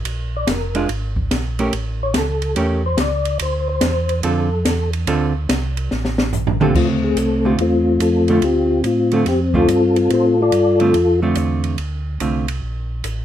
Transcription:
0.04 tonewheel organ A#1, ride
0.36 tonewheel organ D5
0.47 tonewheel organ F1 A#4, snare, hi-hat pedal, ride
0.75 hollow-body jazz guitar G#3 D4 F4, ride
0.89 tonewheel organ G#1, ride
1.16 kick
1.31 tonewheel organ A#1, snare, hi-hat pedal, ride
1.59 hollow-body jazz guitar A3 C#4 G4 A#4, ride
1.73 tonewheel organ A1, ride
2.03 tonewheel organ C#5
2.14 tonewheel organ C#2 A4, snare, hi-hat pedal, ride
2.42 ride
2.56 tonewheel organ E2, hollow-body jazz guitar A3 C#4 G4 A#4, ride
2.86 tonewheel organ C5
2.97 tonewheel organ C#2 D5, snare, hi-hat pedal, ride
3.25 ride
3.39 tonewheel organ D2 C5, ride
3.69 tonewheel organ C5
3.81 tonewheel organ E2, snare, hi-hat pedal, ride
4.09 ride
4.23 tonewheel organ F2 A4, hollow-body jazz guitar D3 C4 F4 A4, ride
4.65 tonewheel organ E2, snare, hi-hat pedal, ride
4.93 ride
5.07 tonewheel organ D2, hollow-body jazz guitar D3 C4 F4 A4, ride
5.49 tonewheel organ C2, snare, hi-hat pedal, ride
5.77 ride
5.91 tonewheel organ A1, snare
6.05 snare
6.18 snare
6.32 tonewheel organ A#1, floor tom, hi-hat pedal
6.47 floor tom
6.60 hollow-body jazz guitar D3 C4 F4 A4, tonewheel organ G4, mid tom
6.75 tonewheel organ D2 A3 C4 F4, kick, crash
7.04 tonewheel organ G#4
7.16 tonewheel organ C2 A4, hi-hat pedal, ride
7.45 hollow-body jazz guitar D3 A3 C4 F4, tonewheel organ G4
7.58 tonewheel organ E2 A3 C4 F4, ride
8.00 tonewheel organ F2 C4 F4 A4, hi-hat pedal, ride
8.28 hollow-body jazz guitar D3 A3 C4 F4, ride
8.42 tonewheel organ D2 C4 G4, ride
8.84 tonewheel organ A2 F4, hi-hat pedal, ride
9.12 hollow-body jazz guitar D3 A3 C4 F4, tonewheel organ A4, ride
9.26 tonewheel organ F2 C4 G4, snare, ride
9.54 hollow-body jazz guitar D3 A3 C4 F4, tonewheel organ C4 F4 A4, kick
9.68 tonewheel organ G2, hi-hat pedal, ride
9.96 tonewheel organ A4, ride
10.10 tonewheel organ A2 F4 A4 C5, ride
10.42 tonewheel organ F4 A4 D5
10.52 tonewheel organ G2, hi-hat pedal, ride
10.80 hollow-body jazz guitar D3 A3 C4 F4, ride
10.94 tonewheel organ F2, ride
11.22 hollow-body jazz guitar D3 A3 C4 F4
11.35 tonewheel organ E2, hi-hat pedal, ride
11.64 ride
11.77 tonewheel organ D2, ride
12.20 tonewheel organ C2, hollow-body jazz guitar D3 A3 C4 F4, hi-hat pedal, ride
12.48 ride
12.62 tonewheel organ A#1
13.04 tonewheel organ A1, hi-hat pedal, ride

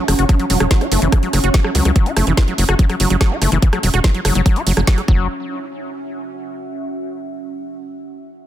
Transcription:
Already playing: ambient pad C#4 F#4 E5, synth texture C#4
0.08 analog synth bass F#1, acid bass F#3, cross-stick, open hi-hat
0.19 analog synth bass F#1, acid bass F#4, closed hi-hat
0.29 acid bass F#3, kick, cross-stick, closed hi-hat
0.40 acid bass F#3, closed hi-hat
0.50 analog synth bass E1, acid bass F#3, open hi-hat
0.60 analog synth bass E1, acid bass F#3, cross-stick, closed hi-hat
0.71 acid bass F#3, kick, snare, closed hi-hat
0.81 acid bass G4, cross-stick, closed hi-hat
0.92 analog synth bass F#1, acid bass A3, open hi-hat
1.02 analog synth bass F#1, acid bass E3, closed hi-hat
1.12 acid bass E3, kick, cross-stick, closed hi-hat
1.23 acid bass F#3, closed hi-hat
1.33 analog synth bass F#1, acid bass F#3, cross-stick, open hi-hat
1.44 analog synth bass F#1, acid bass F#4, closed hi-hat
1.54 acid bass F#3, kick, snare, closed hi-hat
1.64 acid bass F#3, cross-stick
1.75 analog synth bass C#2, acid bass F#3, open hi-hat
1.85 analog synth bass C#2, acid bass F#3, cross-stick, closed hi-hat
1.96 acid bass F#3, kick, closed hi-hat
2.06 acid bass G4, closed hi-hat
2.17 analog synth bass F#1, acid bass A3, cross-stick, open hi-hat
2.27 analog synth bass F#1, acid bass E3, closed hi-hat
2.37 acid bass E3, kick, cross-stick, snare, closed hi-hat
2.48 acid bass F#3, closed hi-hat
2.58 analog synth bass F#1, acid bass F#3, open hi-hat
2.69 analog synth bass F#1, acid bass F#4, cross-stick, closed hi-hat
2.79 acid bass F#3, kick, closed hi-hat
2.90 acid bass F#3, cross-stick, closed hi-hat
3.00 analog synth bass F#1, acid bass F#3, open hi-hat
3.10 analog synth bass F#1, acid bass F#3, closed hi-hat
3.21 acid bass F#3, kick, cross-stick, snare, closed hi-hat
3.31 acid bass G4
3.42 analog synth bass F#1, acid bass A3, cross-stick, open hi-hat
3.52 analog synth bass F#1, acid bass E3, closed hi-hat
3.62 acid bass E3, kick, closed hi-hat
3.73 acid bass F#3, cross-stick, closed hi-hat
3.83 analog synth bass E1, acid bass F#3, open hi-hat
3.94 analog synth bass E1, acid bass F#4, cross-stick, closed hi-hat
4.04 acid bass F#3, kick, snare, closed hi-hat
4.15 acid bass F#3, closed hi-hat
4.25 analog synth bass F#1, acid bass F#3, cross-stick, open hi-hat
4.35 analog synth bass F#1, acid bass F#3, closed hi-hat
4.46 acid bass F#3, kick, cross-stick, closed hi-hat
4.56 acid bass G4, closed hi-hat
4.67 analog synth bass F#1, acid bass F#3, open hi-hat
4.77 analog synth bass F#1, acid bass F#3, cross-stick, closed hi-hat
4.87 acid bass F#3, kick, snare, closed hi-hat
4.98 acid bass G3, cross-stick, closed hi-hat
5.08 analog synth bass F#1, acid bass F#3, ambient pad C#4, kick
5.15 ambient pad F#4
5.42 ambient pad F#5

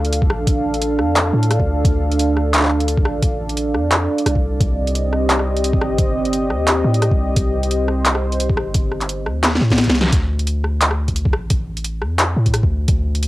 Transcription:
Already playing: 808-style bass D2, analog synth pad D4 A4 D5 F5
0.05 closed hi-hat
0.13 closed hi-hat
0.22 kick
0.30 808-style bass A1, cross-stick
0.47 kick, closed hi-hat
0.74 closed hi-hat
0.82 closed hi-hat
0.98 808-style bass F2, cross-stick
1.16 clap, closed hi-hat
1.33 808-style bass A2
1.43 closed hi-hat
1.51 cross-stick, closed hi-hat
1.60 808-style bass D2, kick
1.85 808-style bass D2, kick, closed hi-hat
2.12 closed hi-hat
2.19 closed hi-hat
2.37 cross-stick
2.54 clap, closed hi-hat
2.57 clap
2.60 cross-stick, clap
2.63 clap
2.65 clap
2.69 clap
2.80 closed hi-hat
2.88 closed hi-hat
2.98 kick
3.05 808-style bass A1, cross-stick
3.23 kick, closed hi-hat
3.49 closed hi-hat
3.57 closed hi-hat
3.74 808-style bass F2, cross-stick
3.91 clap, closed hi-hat
4.18 closed hi-hat
4.26 808-style bass C2, cross-stick, closed hi-hat
4.35 kick
4.60 808-style bass C2, analog synth pad C4 G4 D#5, kick, closed hi-hat
4.87 closed hi-hat
4.95 closed hi-hat
5.13 cross-stick
5.30 clap, closed hi-hat
5.39 cross-stick
5.57 closed hi-hat
5.64 closed hi-hat
5.73 kick
5.81 808-style bass G1, cross-stick
5.98 kick, closed hi-hat
6.25 closed hi-hat
6.33 closed hi-hat
6.50 808-style bass D#2, cross-stick
6.67 clap, closed hi-hat
6.84 808-style bass A2
6.94 closed hi-hat
7.02 cross-stick, closed hi-hat
7.11 808-style bass C2, kick
7.36 808-style bass C2, analog synth pad C5, kick, closed hi-hat
7.63 closed hi-hat
7.71 closed hi-hat
7.88 cross-stick
8.05 clap, closed hi-hat
8.15 cross-stick
8.32 closed hi-hat
8.40 closed hi-hat
8.49 kick
8.57 808-style bass G1, cross-stick
8.74 kick, closed hi-hat
8.92 cross-stick
9.01 clap, closed hi-hat
9.09 closed hi-hat
9.26 808-style bass D#2, cross-stick
9.43 snare, clap, closed hi-hat
9.55 snare
9.61 808-style bass A2
9.70 kick, snare, closed hi-hat
9.72 closed hi-hat
9.75 snare, closed hi-hat
9.78 closed hi-hat
9.81 closed hi-hat
9.84 808-style bass C2, closed hi-hat
9.89 snare
9.95 closed hi-hat
10.01 snare
10.13 808-style bass D2, kick, closed hi-hat
10.39 closed hi-hat
10.47 closed hi-hat
10.64 cross-stick
10.81 clap, closed hi-hat
10.91 cross-stick
11.08 kick, closed hi-hat
11.16 closed hi-hat
11.25 kick
11.33 808-style bass A1, cross-stick
11.50 kick, closed hi-hat
11.77 closed hi-hat
11.85 closed hi-hat
12.02 808-style bass F2, cross-stick
12.19 clap, closed hi-hat
12.37 808-style bass A2
12.46 kick, closed hi-hat
12.54 cross-stick, closed hi-hat
12.63 808-style bass D2, kick
12.88 808-style bass D2, kick, closed hi-hat
13.15 closed hi-hat
13.23 closed hi-hat

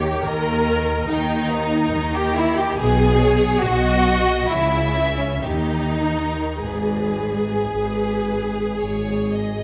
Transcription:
Already playing: double bass section D#2, cello section D#3, violin section G4 C#5, viola section G4
0.23 double bass section D#2, cello section D#3, viola section A#4, violin section A#4 D#5
1.07 double bass section D#2, cello section D#3, viola section D#4, violin section D#4 G5
1.52 violin section A#4
1.93 double bass section D#2, cello section D#3
2.15 viola section G4, violin section G4
2.36 violin section E4, viola section E4
2.58 violin section G4, viola section G4
2.78 double bass section B1, cello section B2, violin section G#4 B4, viola section G#4
3.22 violin section C#5
3.63 double bass section B1, cello section B2, violin section F#4 D#5, viola section F#4
4.49 double bass section C#2, cello section C#3, violin section E4 E5, viola section E4
5.18 violin section C#4, viola section C#4
5.42 double bass section D#2, cello section D#3, violin section D#4 G4, viola section D#4
6.01 violin section A#4
6.60 double bass section G#1, cello section G#2, violin section G#4 B4, viola section G#4
7.72 double bass section G#1, cello section G#2, violin section B4
8.79 double bass section G#1, cello section G#2, violin section C#5
9.34 violin section D#5

